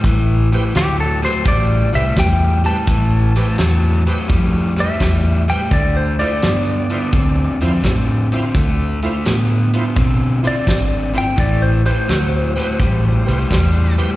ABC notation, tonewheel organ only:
X:1
M:4/4
L:1/16
Q:"Swing" 1/4=85
K:Am
V:1 name="Tonewheel organ"
z2 [GBc] z3 [GBc] z3 [GBc] z3 [GBc] z | z2 [GBc] z3 [GBc] z3 [GBc] z3 [GBc] z | z2 [EFc] z3 [EFc] z3 [EFc] z3 [EFc] z | z2 [EFc] z3 [EFc] z3 [EFc] z3 [EFc] z |
z2 [GBc] z3 [GBc] z3 [GBc] z3 [GBc] z |]